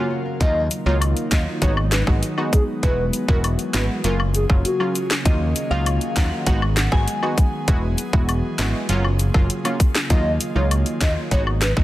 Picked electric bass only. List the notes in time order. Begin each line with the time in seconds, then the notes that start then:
0.41 D#2
0.86 C#2
1.32 D#2
1.62 G#1
2.07 G#1
2.83 E1
3.29 E1
3.74 G#1
4.04 F#1
4.50 F#1
5.26 D#2
5.71 C#2
6.17 D#2
6.47 G#1
6.92 G#1
7.68 E1
8.13 E1
8.59 G#1
8.89 F#1
9.34 F#1
10.10 D#2
10.56 C#2
11.01 D#2
11.31 G#1
11.77 G#1